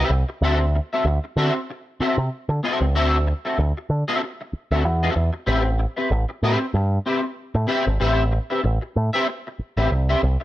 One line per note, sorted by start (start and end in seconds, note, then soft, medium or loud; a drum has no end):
0.00 0.11 C4 medium
0.00 0.11 G4 medium
0.00 0.11 B4 medium
0.00 0.12 E5 medium
0.09 0.23 C2 medium
0.29 muted clean electric guitar stroke soft
0.41 0.79 D2 loud
0.41 0.63 C4 medium
0.41 0.60 F#4 medium
0.41 0.60 A4 medium
0.41 0.59 E5 medium
0.60 muted clean electric guitar stroke medium
0.75 muted clean electric guitar stroke soft
0.93 1.05 C4 medium
0.93 1.05 F#4 soft
0.93 1.06 A4 medium
0.93 1.05 E5 medium
1.05 1.18 D2 medium
1.05 muted clean electric guitar stroke medium
1.24 muted clean electric guitar stroke soft
1.36 1.50 D3 loud
1.36 1.58 C4 medium
1.36 1.55 F#4 loud
1.36 1.55 A4 medium
1.36 1.54 E5 loud
1.55 muted clean electric guitar stroke medium
1.70 muted clean electric guitar stroke soft
2.00 2.17 C4 medium
2.00 2.17 F#4 medium
2.00 2.17 A4 medium
2.00 2.17 E5 medium
2.00 muted picked electric bass stroke soft
2.18 2.28 C3 loud
2.18 muted clean electric guitar stroke soft
2.49 2.59 D3 loud
2.49 muted clean electric guitar stroke soft
2.63 2.84 C4 medium
2.63 2.81 F#4 medium
2.63 2.81 A4 medium
2.63 2.80 E5 medium
2.81 2.95 C#2 medium
2.81 muted clean electric guitar stroke medium
2.95 3.32 D2 loud
2.95 3.16 C4 medium
2.95 3.16 F#4 medium
2.95 3.16 A4 medium
2.95 3.16 E5 loud
3.27 muted clean electric guitar stroke soft
3.45 3.58 C4 medium
3.45 3.58 F#4 medium
3.45 3.58 A4 medium
3.45 3.58 E5 medium
3.58 3.71 D2 loud
3.58 muted clean electric guitar stroke soft
3.77 muted clean electric guitar stroke soft
3.90 4.03 D3 loud
4.08 4.21 C4 medium
4.08 4.22 F#4 medium
4.08 4.22 A4 medium
4.08 4.22 E5 medium
4.22 muted clean electric guitar stroke soft
4.41 muted clean electric guitar stroke soft
4.53 muted picked electric bass stroke soft
4.71 4.85 D2 loud
4.71 4.84 C4 medium
4.71 4.84 F#4 medium
4.71 4.84 A4 medium
4.71 4.85 E5 medium
4.85 5.08 E2 loud
4.85 muted clean electric guitar stroke soft
5.03 5.14 C4 medium
5.03 5.15 F#4 medium
5.03 5.15 A4 medium
5.03 5.15 E5 medium
5.15 5.29 E2 medium
5.15 muted clean electric guitar stroke soft
5.33 muted clean electric guitar stroke soft
5.46 5.85 A1 loud
5.46 5.68 C4 medium
5.46 5.64 G4 medium
5.46 5.64 B4 medium
5.46 5.63 E5 medium
5.64 muted clean electric guitar stroke soft
5.79 muted clean electric guitar stroke soft
5.96 6.10 C4 soft
5.96 6.10 G4 soft
5.96 6.10 B4 medium
5.96 6.10 E5 medium
6.11 6.24 A1 medium
6.11 muted clean electric guitar stroke soft
6.29 muted clean electric guitar stroke soft
6.42 6.56 A2 medium
6.42 6.64 C4 medium
6.42 6.60 G4 medium
6.42 6.60 B4 medium
6.42 6.59 E5 medium
6.61 muted clean electric guitar stroke soft
6.74 6.98 G2 medium
6.74 muted clean electric guitar stroke soft
7.06 7.23 C4 medium
7.06 7.22 G4 medium
7.06 7.22 B4 medium
7.06 7.21 E5 medium
7.23 muted clean electric guitar stroke soft
7.55 7.65 A2 loud
7.55 muted clean electric guitar stroke soft
7.67 7.89 C4 medium
7.67 7.86 G4 medium
7.67 7.86 B4 medium
7.67 7.86 E5 medium
7.87 7.97 G#1 loud
7.87 muted clean electric guitar stroke soft
8.00 8.38 A1 loud
8.00 8.21 C4 medium
8.00 8.21 G4 medium
8.00 8.22 B4 medium
8.00 8.22 E5 loud
8.31 muted clean electric guitar stroke soft
8.50 8.62 C4 soft
8.50 8.62 G4 soft
8.50 8.62 B4 medium
8.50 8.63 E5 medium
8.63 8.77 A1 medium
8.63 muted clean electric guitar stroke soft
8.81 muted clean electric guitar stroke soft
8.96 9.09 A2 medium
9.13 9.28 C4 medium
9.13 9.27 G4 medium
9.13 9.28 B4 medium
9.13 9.28 E5 loud
9.29 muted clean electric guitar stroke soft
9.47 muted clean electric guitar stroke soft
9.59 muted picked electric bass stroke soft
9.77 9.87 A1 medium
9.77 9.91 C4 medium
9.77 9.91 G4 medium
9.77 9.91 B4 medium
9.77 9.91 E5 medium
9.91 10.14 C2 medium
9.91 muted clean electric guitar stroke soft
10.09 10.22 C4 medium
10.09 10.22 G4 medium
10.09 10.22 B4 medium
10.09 10.22 E5 medium
10.23 10.36 C2 medium
10.40 muted clean electric guitar stroke medium